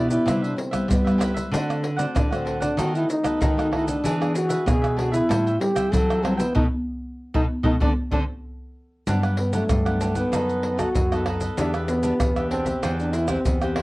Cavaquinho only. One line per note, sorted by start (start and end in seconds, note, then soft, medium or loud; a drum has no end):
0.08 0.24 G4 medium
0.08 0.25 B4 medium
0.08 0.24 D5 medium
0.25 0.40 G4 medium
0.25 0.41 B4 medium
0.25 0.41 C5 medium
0.25 0.41 E5 medium
0.42 0.56 B4 soft
0.42 0.55 C5 soft
0.42 0.57 E5 soft
0.56 muted cavaquinho stroke soft
0.71 0.87 B4 medium
0.71 0.88 C5 soft
0.71 0.87 E5 medium
0.88 1.03 G4 soft
0.88 1.04 B4 medium
0.88 1.03 C5 soft
0.88 1.03 E5 medium
1.05 1.19 B4 soft
1.05 1.18 C5 soft
1.05 1.19 E5 soft
1.18 1.34 G4 medium
1.18 1.34 B4 medium
1.18 1.34 C5 medium
1.18 1.33 E5 medium
1.34 1.50 B4 soft
1.34 1.51 C5 soft
1.34 1.50 E5 soft
1.52 1.82 D4 medium
1.52 1.82 C5 medium
1.52 1.83 D5 medium
1.52 1.83 F#5 medium
1.83 muted cavaquinho stroke soft
1.97 2.30 C5 medium
1.97 2.29 D5 medium
1.97 2.28 F#5 medium
2.31 2.45 C5 soft
2.31 2.46 D5 soft
2.31 2.45 F#5 soft
2.45 2.60 D4 soft
2.45 2.61 C5 medium
2.45 2.60 D5 soft
2.45 2.59 F#5 medium
2.60 2.77 C5 medium
2.60 2.76 D5 medium
2.60 2.76 F#5 medium
2.77 2.92 D#4 medium
2.77 2.92 A4 medium
2.77 2.93 B4 medium
2.77 2.93 D#5 medium
2.94 3.08 A4 soft
2.94 3.08 B4 soft
2.94 3.08 D#5 soft
3.09 muted cavaquinho stroke soft
3.23 3.40 A4 medium
3.23 3.39 B4 medium
3.23 3.39 D#5 medium
3.40 3.55 D#4 medium
3.40 3.56 A4 medium
3.40 3.56 B4 medium
3.40 3.56 D#5 medium
3.58 3.71 A4 soft
3.58 3.72 B4 soft
3.58 3.72 D#5 soft
3.72 3.86 D#4 medium
3.72 3.87 A4 medium
3.72 3.86 B4 medium
3.72 3.85 D#5 medium
3.86 4.03 A4 soft
3.86 4.02 B4 soft
3.86 4.02 D#5 soft
4.04 4.33 D4 medium
4.04 4.33 G#4 medium
4.04 4.34 B4 medium
4.04 4.34 E5 medium
4.34 muted cavaquinho stroke soft
4.49 4.81 G#4 medium
4.49 4.81 B4 medium
4.49 4.80 E5 medium
4.82 4.96 G#4 soft
4.82 4.97 B4 soft
4.82 4.96 E5 soft
4.96 5.12 D4 medium
4.96 5.12 G#4 soft
4.96 5.12 B4 medium
4.96 5.11 E5 medium
5.12 5.28 G#4 medium
5.12 5.28 B4 medium
5.12 5.27 E5 medium
5.29 5.44 A4 medium
5.29 5.44 C5 medium
5.29 5.45 E5 medium
5.29 5.45 G5 medium
5.46 5.60 C5 soft
5.46 5.60 E5 soft
5.46 5.60 G5 medium
5.61 muted cavaquinho stroke soft
5.76 5.91 C5 medium
5.76 5.91 E5 medium
5.76 5.91 G5 medium
5.92 6.07 A4 soft
5.92 6.07 C5 medium
5.92 6.07 E5 medium
5.92 6.08 G5 medium
6.09 6.22 C5 soft
6.09 6.23 E5 soft
6.09 6.23 G5 soft
6.23 6.38 A4 medium
6.23 6.38 C5 medium
6.23 6.38 E5 medium
6.23 6.36 G5 medium
6.38 6.54 C5 soft
6.38 6.54 E5 soft
6.38 6.53 G5 medium
6.55 6.65 A4 medium
6.55 6.65 B4 medium
6.55 6.65 D#5 medium
7.34 7.44 A4 medium
7.34 7.44 B4 medium
7.34 7.44 D#5 medium
7.64 7.74 A4 medium
7.64 7.75 B4 medium
7.64 7.75 D#5 loud
7.81 7.91 A4 loud
7.81 7.91 C5 medium
7.81 7.91 D5 loud
8.12 8.22 A4 medium
8.12 8.22 C5 medium
8.12 8.22 D5 medium
9.07 9.21 D4 medium
9.07 9.22 G4 medium
9.07 9.22 B4 medium
9.07 9.22 F#5 medium
9.23 9.52 G4 soft
9.23 9.53 B4 soft
9.23 9.53 F#5 soft
9.53 9.62 D4 medium
9.53 9.62 G4 medium
9.53 9.63 B4 medium
9.53 9.63 F#5 medium
9.86 10.00 G4 soft
9.86 10.00 B4 soft
9.86 10.00 F#5 soft
10.00 10.15 D4 medium
10.00 10.15 G4 medium
10.00 10.15 B4 medium
10.00 10.14 F#5 medium
10.15 10.31 G4 soft
10.15 10.31 B4 soft
10.15 10.30 F#5 soft
10.33 10.61 D#4 medium
10.33 10.62 A4 medium
10.33 10.63 B4 medium
10.33 10.64 D#5 medium
10.62 10.76 D#4 soft
10.62 10.77 A4 soft
10.62 10.77 B4 soft
10.62 10.78 D#5 soft
10.78 10.87 D#4 medium
10.78 10.88 A4 medium
10.78 10.88 B4 medium
10.78 10.88 D#5 medium
11.12 11.26 A4 soft
11.12 11.27 B4 soft
11.12 11.26 D#5 soft
11.26 11.41 D#4 medium
11.26 11.41 A4 medium
11.26 11.42 B4 medium
11.26 11.40 D#5 medium
11.41 11.57 A4 soft
11.41 11.57 B4 soft
11.41 11.56 D#5 soft
11.58 11.72 D4 medium
11.58 11.73 G4 medium
11.58 11.73 B4 medium
11.58 11.73 E5 medium
11.74 12.02 G4 soft
11.74 12.03 B4 soft
11.74 12.03 E5 soft
12.03 12.13 D4 medium
12.03 12.13 G4 medium
12.03 12.13 B4 medium
12.03 12.13 E5 medium
12.36 12.51 G4 soft
12.36 12.51 B4 soft
12.36 12.51 E5 soft
12.51 12.66 D4 medium
12.51 12.66 G4 medium
12.51 12.65 B4 medium
12.51 12.64 E5 medium
12.65 12.82 G4 soft
12.65 12.81 B4 soft
12.65 12.81 E5 soft
12.82 13.12 E4 medium
12.82 13.13 B4 medium
12.82 13.12 C5 medium
12.82 13.14 G5 medium
13.13 13.27 E4 soft
13.13 13.28 B4 soft
13.13 13.27 C5 medium
13.13 13.28 G5 medium
13.28 13.38 E4 medium
13.28 13.39 B4 medium
13.28 13.38 C5 medium
13.28 13.39 G5 medium
13.62 13.77 B4 soft
13.62 13.76 C5 soft
13.62 13.76 G5 soft
13.76 13.82 E4 medium
13.76 13.82 B4 medium
13.76 13.82 C5 medium
13.76 13.82 G5 medium